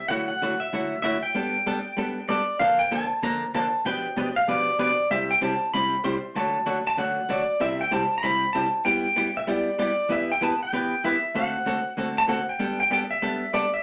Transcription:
0.08 hollow-body jazz guitar D3 F#3 A3 E4 F#4, pedal steel guitar F#5
0.28 pedal steel guitar F#5
0.42 hollow-body jazz guitar D3 F#3 A3 E4 F#4
0.60 pedal steel guitar E5
0.73 hollow-body jazz guitar D3 F#3 A3 E4 F#4
1.02 hollow-body jazz guitar D3 F#3 A3 E4 F#4, pedal steel guitar E5
1.23 pedal steel guitar G5
1.34 hollow-body jazz guitar G3 B3 D4 A4
1.66 hollow-body jazz guitar G3 B3 D4 A4
1.97 hollow-body jazz guitar G3 B3 D4 A4
2.28 hollow-body jazz guitar G3 B3 D4 A4, pedal steel guitar D5
2.60 hollow-body jazz guitar A#2 D3 F3 A#3 D4 A4, pedal steel guitar F5
2.79 pedal steel guitar G5
2.91 hollow-body jazz guitar A#2 D3 F3 A#3 D4 A4, pedal steel guitar A5
3.22 hollow-body jazz guitar A#2 D3 F3 A#3 D4 A4, pedal steel guitar A#5
3.54 hollow-body jazz guitar A#2 D3 F3 A#3 D4 A4, pedal steel guitar A5
3.85 hollow-body jazz guitar B2 F3 B3 D4 G4 B4, pedal steel guitar G5
4.16 hollow-body jazz guitar B2 F3 B3 D4 G4 B4
4.36 pedal steel guitar F5
4.48 hollow-body jazz guitar B2 F3 B3 D4 G4 B4, pedal steel guitar D5
4.79 hollow-body jazz guitar B2 F3 B3 D4 G4 B4, pedal steel guitar D5
5.10 hollow-body jazz guitar C3 G3 C4 E4 G4, pedal steel guitar E5
5.31 pedal steel guitar G5
5.41 hollow-body jazz guitar C3 G3 C4 E4 G4, pedal steel guitar A5
5.74 hollow-body jazz guitar C3 G3 C4 E4 G4, pedal steel guitar B5
6.04 hollow-body jazz guitar C3 G3 C4 E4 G4, pedal steel guitar C6
6.36 hollow-body jazz guitar D3 F#3 A3 D4 F#4, pedal steel guitar A5
6.66 hollow-body jazz guitar D3 F#3 A3 D4 F#4
6.87 pedal steel guitar A5
6.97 hollow-body jazz guitar D3 F#3 A3 D4 F#4, pedal steel guitar F#5
7.29 hollow-body jazz guitar D3 F#3 A3 D4 F#4, pedal steel guitar D5
7.60 hollow-body jazz guitar C3 G3 C4 E4 G4, pedal steel guitar E5
7.81 pedal steel guitar G5
7.91 hollow-body jazz guitar C3 G3 C4 E4 G4, pedal steel guitar A5
8.18 pedal steel guitar A#5
8.23 hollow-body jazz guitar C3 G3 C4 E4 G4, pedal steel guitar B5
8.53 hollow-body jazz guitar C3 G3 C4 E4 G4, pedal steel guitar A5
8.85 hollow-body jazz guitar G3 B3 E4 G4, pedal steel guitar G5
9.16 hollow-body jazz guitar G3 B3 E4 G4
9.37 pedal steel guitar E5
9.47 hollow-body jazz guitar G3 B3 E4 G4, pedal steel guitar D5
9.78 hollow-body jazz guitar G3 B3 E4 G4, pedal steel guitar D5
10.09 hollow-body jazz guitar E3 B3 E4 G4 B4, pedal steel guitar E5
10.32 pedal steel guitar G5
10.41 hollow-body jazz guitar E3 B3 E4 G4 B4, pedal steel guitar A5
10.63 pedal steel guitar G5
10.73 hollow-body jazz guitar E3 B3 E4 G4 B4
11.04 hollow-body jazz guitar E3 B3 E4 G4 B4, pedal steel guitar E5
11.35 hollow-body jazz guitar D3 A3 C4 F#4 A4, pedal steel guitar F#5
11.66 hollow-body jazz guitar D3 A3 C4 F#4 A4
11.97 hollow-body jazz guitar D3 A3 C4 F#4 A4
12.18 pedal steel guitar A5
12.27 hollow-body jazz guitar D3 A3 C4 F#4 A4, pedal steel guitar F#5
12.49 pedal steel guitar G5
12.59 hollow-body jazz guitar G3 B3 D4 A4
12.80 pedal steel guitar G5
12.90 hollow-body jazz guitar G3 B3 D4 A4, pedal steel guitar G5
13.11 pedal steel guitar E5
13.22 hollow-body jazz guitar G3 B3 D4 A4
13.53 hollow-body jazz guitar G3 B3 D4 A4, pedal steel guitar D5
13.74 pedal steel guitar E5

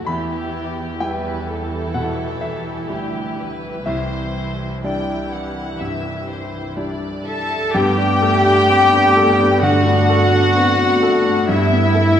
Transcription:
0.06 grand piano E2 B5, cello section E2, viola section E3 E4, violin section G4
1.00 viola section E3 E4, grand piano G3 E4 G5, violin section G4 B4
1.49 violin section A4
1.94 grand piano B2 F#5
2.41 grand piano E5
2.89 cello section D2, grand piano G3 E4, violin section G4
3.38 violin section B4
3.86 grand piano C2 E5, cello section C2, viola section E3 E4, violin section G4 C5
4.83 viola section E3 E4, grand piano G3 D4 E4 D5, violin section G4 G5
5.32 violin section F#5
5.80 grand piano G2, violin section E5
6.29 violin section C5
6.77 grand piano G3 D4 E4, violin section D5
7.26 cello section A4, clarinet A4, violin section E5 A5, flute A5
7.74 grand piano G2, double bass section G2, viola section A3 B3, french horn section B3, cello section G4, clarinet G4, violin section G5, flute G5
7.98 grand piano D4
8.22 french horn section A3, grand piano A4
8.46 grand piano D4
8.69 french horn section B3, grand piano C4
8.93 grand piano D4
9.17 grand piano A4
9.39 grand piano D4
9.63 grand piano D3, french horn section D4, cello section F#4, clarinet F#4, flute F#5, violin section F#5
9.86 grand piano D4
10.09 grand piano A4
10.32 grand piano D4
10.56 french horn section B3, grand piano C4
10.79 grand piano D4
11.03 french horn section A3, grand piano A4
11.25 grand piano D4
11.49 grand piano G2, double bass section G2, french horn section G3, viola section A3 B3, cello section E4, clarinet E4, violin section E5, flute E5
11.72 grand piano B3
11.94 french horn section A3, grand piano A4

